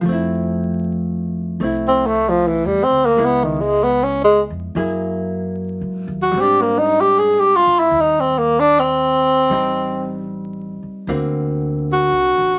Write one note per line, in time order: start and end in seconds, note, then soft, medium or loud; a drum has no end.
0.01 1.57 F2 medium
0.01 3.18 F3 soft
0.05 1.60 A3 soft
0.05 1.61 C4 medium
0.12 1.63 E4 soft
1.60 2.62 C2 medium
1.60 3.18 A3 soft
1.60 3.19 C4 soft
1.64 3.18 E4 soft
1.88 2.08 C4 medium
2.07 2.31 A3 medium
2.29 2.49 F3 medium
2.47 2.68 E3 medium
2.65 2.90 E2 medium
2.65 2.85 G3 medium
2.84 3.07 C4 medium
2.90 3.16 D2 medium
3.05 3.27 A#3 medium
3.17 4.47 C#2 medium
3.17 4.76 G#3 medium
3.17 4.76 B3 medium
3.17 4.76 E4 medium
3.25 3.46 B3 medium
3.44 3.62 D#3 medium
3.61 3.85 G#3 medium
3.84 4.05 B3 medium
4.04 4.24 C#4 medium
4.25 4.41 G#3 medium
4.50 4.74 F2 medium
4.75 5.77 F#2 medium
4.75 6.31 F#3 medium
4.75 6.34 A#3 soft
4.75 6.34 E4 medium
4.75 6.35 G#4 medium
5.81 6.06 G#2 medium
6.08 6.32 D#2 medium
6.22 6.42 F#4 medium
6.32 7.63 G#2 medium
6.32 9.48 G3 soft
6.37 9.51 C4 medium
6.37 6.63 G4 medium
6.42 9.52 D4 medium
6.62 6.80 A#3 medium
6.79 7.02 D#4 medium
7.01 7.20 G4 medium
7.19 7.41 G#4 medium
7.39 7.58 G4 medium
7.56 7.81 F4 medium
7.67 7.90 G2 medium
7.79 8.02 E4 medium
7.91 9.45 D#2 medium
8.01 8.22 D#4 medium
8.20 8.40 C4 medium
8.39 8.62 A#3 medium
8.60 8.81 D4 medium
8.80 10.33 C4 medium
9.50 10.78 A1 medium
9.50 11.08 G3 soft
9.50 11.08 C4 soft
9.50 11.08 D#4 medium
10.83 muted upright bass stroke soft
11.07 12.08 D2 medium
11.07 12.59 D3 soft
11.07 12.59 A#3 medium
11.07 12.59 C4 medium
11.07 12.59 F#4 medium
11.93 12.59 F#4 medium
12.12 12.36 C2 medium
12.38 12.59 A1 medium